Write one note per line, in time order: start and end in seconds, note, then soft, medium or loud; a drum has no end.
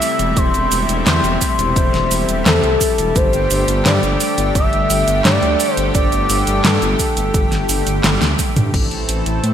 0.00 3.12 C3 medium
0.00 8.70 G3 medium
0.00 3.12 A3 medium
0.00 3.12 E4 medium
0.00 0.38 E5 loud
0.00 open hi-hat medium
0.00 cabasa medium
0.19 0.33 E1 medium
0.19 closed hi-hat soft
0.19 cabasa soft
0.37 0.50 E1 loud
0.37 1.06 C5 loud
0.37 kick loud
0.37 closed hi-hat medium
0.37 cabasa soft
0.54 0.68 E1 medium
0.54 closed hi-hat soft
0.54 cabasa soft
0.72 0.85 E1 medium
0.72 open hi-hat medium
0.72 cabasa medium
0.89 1.02 E1 medium
0.89 closed hi-hat medium
0.89 cabasa soft
1.06 1.20 E2 loud
1.06 2.48 C5 loud
1.06 snare loud
1.06 clap loud
1.06 closed hi-hat medium
1.06 cabasa soft
1.24 1.37 E1 medium
1.24 closed hi-hat soft
1.24 cabasa soft
1.41 kick medium
1.41 open hi-hat medium
1.41 cabasa medium
1.59 1.72 E1 medium
1.59 closed hi-hat medium
1.59 cabasa soft
1.76 1.90 E1 loud
1.76 kick loud
1.76 closed hi-hat medium
1.76 cabasa soft
1.94 2.07 E1 medium
1.94 snare soft
1.94 closed hi-hat soft
2.11 2.25 E1 loud
2.11 open hi-hat medium
2.11 cabasa medium
2.29 2.42 E1 medium
2.29 closed hi-hat soft
2.29 cabasa soft
2.46 2.59 E2 loud
2.46 3.18 A4 loud
2.46 snare loud
2.46 clap loud
2.46 closed hi-hat soft
2.46 cabasa soft
2.64 2.77 C2 medium
2.64 closed hi-hat soft
2.81 kick medium
2.81 open hi-hat medium
2.81 cabasa medium
2.98 3.12 E1 medium
2.98 closed hi-hat soft
2.98 cabasa soft
3.16 3.29 G1 loud
3.16 8.70 D3 medium
3.16 8.70 A3 medium
3.16 8.70 G4 medium
3.16 3.87 C5 loud
3.16 kick loud
3.16 closed hi-hat medium
3.16 cabasa soft
3.33 3.47 G1 medium
3.33 closed hi-hat soft
3.33 cabasa soft
3.51 3.64 G1 loud
3.51 open hi-hat medium
3.51 cabasa medium
3.68 3.82 G1 medium
3.68 closed hi-hat medium
3.68 cabasa soft
3.86 3.99 G2 loud
3.86 4.55 D5 loud
3.86 snare loud
3.86 clap loud
3.86 closed hi-hat medium
3.86 cabasa soft
4.03 4.17 G1 medium
4.03 closed hi-hat soft
4.03 cabasa soft
4.20 open hi-hat medium
4.20 cabasa medium
4.38 4.51 G1 medium
4.38 closed hi-hat medium
4.38 cabasa soft
4.55 4.69 G1 loud
4.55 5.21 E5 loud
4.55 kick loud
4.55 closed hi-hat medium
4.55 cabasa soft
4.73 4.86 G1 medium
4.73 closed hi-hat soft
4.90 5.04 G1 medium
4.90 open hi-hat medium
4.90 cabasa medium
5.08 5.21 G1 medium
5.08 closed hi-hat medium
5.08 cabasa soft
5.25 5.39 G2 loud
5.25 5.74 D5 loud
5.25 snare loud
5.25 clap loud
5.25 closed hi-hat medium
5.25 cabasa soft
5.42 5.56 D2 medium
5.42 closed hi-hat soft
5.60 open hi-hat medium
5.60 cabasa medium
5.74 5.91 G1 medium
5.74 5.91 C5 loud
5.74 closed hi-hat medium
5.74 cabasa soft
5.95 6.08 G1 loud
5.95 6.61 D5 loud
5.95 kick loud
5.95 closed hi-hat medium
5.95 cabasa soft
6.12 6.26 G1 medium
6.12 closed hi-hat soft
6.12 cabasa soft
6.30 6.43 G1 loud
6.30 open hi-hat medium
6.30 cabasa medium
6.47 6.61 G1 medium
6.47 closed hi-hat medium
6.47 cabasa soft
6.65 6.78 G2 loud
6.65 8.35 A4 medium
6.65 snare loud
6.65 clap loud
6.65 closed hi-hat medium
6.65 cabasa soft
6.82 6.96 G1 medium
6.82 closed hi-hat soft
6.82 cabasa soft
6.99 kick medium
6.99 open hi-hat medium
6.99 cabasa medium
7.17 7.30 G1 medium
7.17 closed hi-hat medium
7.17 cabasa soft
7.34 7.48 G1 loud
7.34 kick loud
7.34 closed hi-hat medium
7.34 cabasa soft
7.52 7.65 G1 medium
7.52 snare soft
7.52 closed hi-hat soft
7.52 cabasa soft
7.69 7.83 G1 loud
7.69 open hi-hat medium
7.69 cabasa medium
7.87 8.00 G1 medium
7.87 closed hi-hat medium
7.87 cabasa soft
8.04 8.18 G1 loud
8.04 snare loud
8.04 clap loud
8.04 closed hi-hat medium
8.04 high tom medium
8.04 cabasa soft
8.22 8.35 D2 medium
8.22 snare medium
8.22 closed hi-hat soft
8.22 cabasa soft
8.39 kick medium
8.39 open hi-hat medium
8.39 cabasa medium
8.56 8.70 G2 medium
8.56 closed hi-hat medium
8.56 mid tom medium
8.56 cabasa soft
8.74 8.87 A1 loud
8.74 9.54 E3 medium
8.74 9.54 A3 medium
8.74 9.54 C4 medium
8.74 9.54 A4 medium
8.74 kick loud
8.74 closed hi-hat medium
8.74 crash loud
8.91 9.05 A1 medium
8.91 closed hi-hat soft
9.09 9.22 A1 medium
9.09 closed hi-hat medium
9.26 9.40 A1 medium
9.26 closed hi-hat medium
9.44 9.54 A2 loud
9.44 closed hi-hat medium